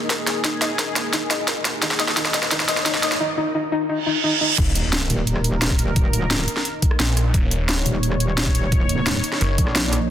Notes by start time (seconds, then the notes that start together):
Already playing: A#3 D#4 G#4 A#4 D#5, riser
0.10 A#4, kick, snare, closed hi-hat
0.27 snare, closed hi-hat
0.44 D#4, kick, snare, closed hi-hat
0.62 D#5, snare, closed hi-hat
0.79 A#4, kick, snare, closed hi-hat
0.96 snare, closed hi-hat
1.13 D#4, kick, snare, closed hi-hat
1.31 D#5, snare, closed hi-hat
1.48 A#4, kick, snare, closed hi-hat
1.65 snare, closed hi-hat
1.82 D#4, kick, snare, closed hi-hat
1.91 snare
2.00 D#5, snare, closed hi-hat
2.08 snare
2.17 D#4, kick, snare, closed hi-hat
2.25 snare
2.34 D#5, snare, closed hi-hat
2.43 snare
2.51 D#4, kick, snare, closed hi-hat
2.60 snare
2.68 D#5, snare, closed hi-hat
2.77 snare
2.86 D#4, kick, snare, closed hi-hat
2.94 snare
3.03 D#5, snare, closed hi-hat
3.12 snare
3.20 D#4
3.38 D#4
3.55 D#4
3.72 D#4
3.89 D#4, reverse cymbal
4.06 D#4
4.24 D#4
4.41 D#4
4.58 D#1 A#3 D#4 A#4, kick, closed hi-hat, crash, impact
4.75 closed hi-hat
4.93 snare, closed hi-hat
5.01 cross-stick
5.10 D#1, closed hi-hat
5.27 closed hi-hat
5.36 cross-stick
5.44 closed hi-hat
5.62 snare, closed hi-hat
5.70 kick, cross-stick
5.79 closed hi-hat
5.96 kick, closed hi-hat
6.06 D1
6.13 closed hi-hat
6.31 C#1, snare, closed hi-hat
6.39 cross-stick
6.48 closed hi-hat
6.57 snare
6.65 closed hi-hat
6.82 kick, closed hi-hat
6.91 cross-stick
7.00 A#1, snare, closed hi-hat
7.17 cross-stick, closed hi-hat
7.34 D#1 C#5, kick, closed hi-hat
7.51 closed hi-hat
7.69 snare, closed hi-hat
7.77 cross-stick
7.86 D#1, closed hi-hat
8.03 closed hi-hat
8.12 cross-stick
8.20 closed hi-hat
8.38 snare, closed hi-hat
8.46 kick, cross-stick
8.55 closed hi-hat
8.72 kick, closed hi-hat
8.89 closed hi-hat
9.06 snare, closed hi-hat
9.15 cross-stick
9.24 closed hi-hat
9.32 snare
9.41 F#1, closed hi-hat
9.58 A#1, kick, closed hi-hat
9.67 cross-stick
9.75 snare, closed hi-hat
9.93 cross-stick, closed hi-hat